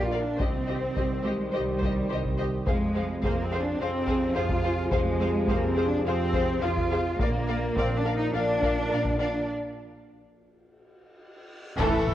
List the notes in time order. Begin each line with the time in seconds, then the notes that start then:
Already playing: A#1 F3 A#3 F4 D5
0.03 F4
0.10 A#4 D5 F5
0.21 D4
0.37 D#3 C4 G4 C5 D#5, taiko
0.41 C2 G3 C5
0.66 G4 C5 D#5
0.95 C2 G4 C5 D#5, taiko
1.22 G#3 G4 C5 D#5
1.51 C2 G3 G4 C5 D#5
1.79 G4 C5, taiko
1.84 D#5
2.09 C2 G4 C5 D#5
2.24 taiko
2.37 G4 C5 D#5
2.66 F2 C3 F3 G#3 G#4 C5 F5, taiko
2.94 G#4 C5 F5
3.21 F2 A#3 G#4 C5 F5, taiko
3.43 C4
3.52 G#4 C5 F5
3.61 D4
3.78 F2 C4 G#4 C5 F5
4.06 G#4 C5 F5, taiko
4.35 F2 F4 G#4 C5 F5
4.49 taiko
4.64 G#4 C5 F5
4.91 F2 G#3 G#4 C5 F5, taiko
5.20 G#4 C5 F5
5.48 F2 A#3 G#4 C5 F5, taiko
5.68 C4
5.76 G#4 C5 F5
5.86 D4
6.05 F2 C4 G#4 C5 F5
6.33 G#4 C5 F5, taiko
6.61 F2 F4 G#4 C5 F5
6.77 taiko
6.90 G#4 C5 F5
7.19 A#1 A#2 F3 A#3 A#4 D5 F5, taiko
7.47 A#4 D5 F5
7.76 A#1 C4 A#4 D5 F5, taiko
7.97 D4
8.04 A#4 D5 F5
8.16 D#4
8.34 A#1 D4 A#4 D5 F5
8.61 A#4 D5 F5, taiko
8.89 A#1 A#4 D5 F5
9.05 taiko
9.17 D4 A#4 D5
9.22 F5
9.48 reverse cymbal
11.77 A1 A2 E3 A3 A4 E5 B5, concert bass drum, taiko, crash, sub drop
11.94 A2
12.08 taiko low-mid